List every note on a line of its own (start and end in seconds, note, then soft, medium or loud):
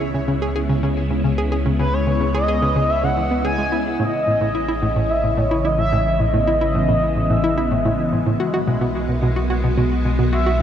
0.00 3.97 C#2 medium
0.00 3.96 C#3 medium
0.00 3.96 G#3 medium
0.00 3.96 B3 medium
0.00 8.36 E4 medium
0.00 4.01 C#5 medium
0.14 0.21 C#3 medium
0.28 0.35 C#3 loud
0.42 0.49 G#4 loud
0.56 0.60 G#4 loud
0.69 0.74 C#3 loud
0.83 0.87 C#3 loud
1.11 1.18 C#3 medium
1.24 1.31 C#3 medium
1.38 1.45 G#4 loud
1.52 1.56 G#4 loud
1.66 1.70 C#3 loud
1.79 1.84 C#3 loud
1.79 1.95 B4 loud
1.93 2.34 C#5 medium
2.07 2.14 C#3 medium
2.21 2.28 C#3 loud
2.35 2.41 G#4 loud
2.35 2.91 D#5 loud
2.48 2.53 G#4 loud
2.62 2.66 C#3 loud
2.76 2.80 C#3 loud
2.90 3.05 E5 loud
3.03 3.10 C#3 medium
3.03 3.44 F#5 loud
3.17 3.24 E3 medium
3.31 3.38 B3 medium
3.45 3.52 G#4 medium
3.45 3.83 G#5 loud
3.58 3.63 G#3 medium
3.72 3.83 E4 medium
4.00 8.37 A1 medium
4.00 4.04 A2 loud
4.00 8.36 C#3 medium
4.00 8.36 E3 medium
4.00 10.62 G#3 medium
4.00 6.18 C#4 medium
4.00 5.11 D#5 loud
4.27 4.34 A2 medium
4.41 4.48 A2 loud
4.55 4.62 E4 loud
4.68 4.73 E4 loud
4.82 4.86 A2 loud
4.96 5.00 A2 loud
5.10 5.39 E5 loud
5.24 5.31 A2 medium
5.37 5.44 A2 loud
5.37 5.67 C#5 medium
5.51 5.58 E4 loud
5.65 5.69 E4 loud
5.65 5.78 D#5 medium
5.79 5.83 A2 loud
5.79 6.22 E5 loud
5.92 5.97 A2 loud
6.20 6.27 A2 medium
6.20 10.62 B3 medium
6.20 7.32 D#5 loud
6.34 6.41 A2 loud
6.47 6.54 E4 loud
6.61 6.65 E4 loud
6.75 6.79 A2 loud
6.89 6.93 A2 loud
7.16 7.23 A2 medium
7.30 7.37 A2 loud
7.30 8.13 E5 medium
7.44 7.51 E4 loud
7.58 7.62 E4 loud
7.71 7.76 A2 loud
7.85 7.89 A2 loud
8.13 8.20 A2 medium
8.26 8.33 A2 loud
8.40 10.62 B1 medium
8.40 10.62 D#3 medium
8.40 10.62 F#3 medium
8.40 8.47 F#4 loud
8.40 10.62 F#4 medium
8.54 8.58 F#4 loud
8.67 8.72 B2 loud
8.81 8.85 B2 loud
9.09 9.16 B2 medium
9.22 9.30 B2 loud
9.36 9.43 F#4 loud
9.50 9.54 F#4 loud
9.64 9.68 B2 loud
9.78 9.82 B2 medium
10.05 10.12 B2 medium
10.19 10.26 B2 loud
10.33 10.40 F#4 loud
10.33 10.62 E5 medium
10.46 10.51 F#4 loud